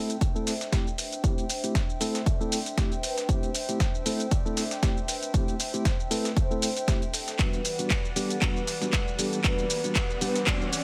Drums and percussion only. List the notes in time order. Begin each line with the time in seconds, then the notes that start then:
0.10 closed hi-hat, shaker
0.21 kick, closed hi-hat, shaker
0.36 shaker
0.47 snare, closed hi-hat, open hi-hat, shaker
0.61 snare, closed hi-hat, shaker
0.72 kick, snare, closed hi-hat, shaker
0.87 shaker
0.98 closed hi-hat, open hi-hat, shaker
1.12 closed hi-hat, shaker
1.24 kick, closed hi-hat, shaker
1.38 closed hi-hat, shaker
1.49 closed hi-hat, open hi-hat, shaker
1.64 closed hi-hat, shaker
1.75 kick, snare, closed hi-hat, shaker
1.90 shaker
2.01 closed hi-hat, open hi-hat, shaker
2.15 snare, closed hi-hat, shaker
2.26 kick, closed hi-hat, shaker
2.41 shaker
2.52 closed hi-hat, open hi-hat, shaker
2.66 closed hi-hat, shaker
2.78 kick, snare, closed hi-hat, shaker
2.92 closed hi-hat, shaker
3.03 closed hi-hat, open hi-hat, shaker
3.17 snare, closed hi-hat, shaker
3.29 kick, closed hi-hat, shaker
3.43 closed hi-hat, shaker
3.54 closed hi-hat, open hi-hat, shaker
3.69 closed hi-hat, shaker
3.80 kick, snare, closed hi-hat, shaker
3.95 shaker
4.06 closed hi-hat, open hi-hat, shaker
4.20 closed hi-hat, shaker
4.31 kick, closed hi-hat, shaker
4.46 shaker
4.57 snare, closed hi-hat, open hi-hat, shaker
4.71 snare, closed hi-hat, shaker
4.83 kick, snare, closed hi-hat, shaker
4.97 shaker
5.08 closed hi-hat, open hi-hat, shaker
5.23 closed hi-hat, shaker
5.34 kick, closed hi-hat, shaker
5.48 closed hi-hat, shaker
5.60 closed hi-hat, open hi-hat, shaker
5.74 closed hi-hat, shaker
5.85 kick, snare, closed hi-hat, shaker
6.00 shaker
6.11 closed hi-hat, open hi-hat, shaker
6.25 snare, closed hi-hat, shaker
6.37 kick, closed hi-hat, shaker
6.51 shaker
6.62 closed hi-hat, open hi-hat, shaker
6.76 closed hi-hat, shaker
6.88 kick, snare, closed hi-hat, shaker
7.02 closed hi-hat, shaker
7.13 closed hi-hat, open hi-hat, shaker
7.28 snare, closed hi-hat, shaker
7.39 kick, clap, closed hi-hat, shaker
7.53 closed hi-hat, shaker
7.65 closed hi-hat, open hi-hat, shaker
7.79 closed hi-hat, shaker
7.90 kick, snare, clap, closed hi-hat, shaker
8.05 shaker
8.16 closed hi-hat, open hi-hat, shaker
8.30 closed hi-hat, shaker
8.42 kick, clap, closed hi-hat, shaker
8.56 shaker
8.67 snare, closed hi-hat, open hi-hat, shaker
8.82 snare, closed hi-hat, shaker
8.93 kick, snare, clap, closed hi-hat, shaker
9.08 shaker
9.19 closed hi-hat, open hi-hat, shaker
9.33 closed hi-hat, shaker
9.44 kick, clap, closed hi-hat, shaker
9.58 closed hi-hat, shaker
9.70 closed hi-hat, open hi-hat, shaker
9.84 closed hi-hat, shaker
9.96 kick, snare, clap, closed hi-hat, shaker
10.10 shaker
10.21 closed hi-hat, open hi-hat, shaker
10.35 snare, closed hi-hat, shaker
10.47 kick, clap, closed hi-hat, shaker
10.61 shaker
10.73 closed hi-hat, open hi-hat, shaker